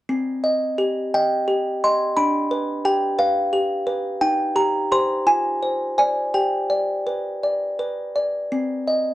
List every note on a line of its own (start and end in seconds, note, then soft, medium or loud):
0.09 2.13 C4 soft
0.44 1.00 D#5 soft
0.78 1.34 G4 soft
1.14 1.69 D#5 soft
1.14 1.80 G5 medium
1.48 2.03 G4 soft
1.84 2.17 D#5 soft
1.84 2.16 C6 medium
2.17 4.18 D4 medium
2.17 2.82 B5 medium
2.51 3.06 B4 soft
2.85 3.40 G4 soft
2.85 3.18 G5 medium
3.19 3.74 B4 soft
3.19 4.18 F5 medium
3.53 4.08 G4 soft
3.87 4.22 B4 soft
4.21 5.24 D#4 medium
4.21 4.55 G5 medium
4.56 4.90 G4 soft
4.56 4.90 A#5 medium
4.92 5.24 G4 soft
4.92 5.24 C5 soft
4.92 5.26 C6 medium
5.27 6.31 F4 medium
5.27 5.96 G#5 medium
5.63 5.97 C5 soft
5.98 6.31 C5 soft
5.98 6.31 D5 soft
5.98 6.33 G#5 medium
6.34 8.47 G4 soft
6.34 7.39 G5 medium
6.70 7.28 D5 soft
7.07 7.65 B4 soft
7.43 8.01 D5 soft
7.79 8.37 B4 soft
8.16 8.51 D5 soft
8.52 9.14 C4 soft
8.88 9.14 D#5 soft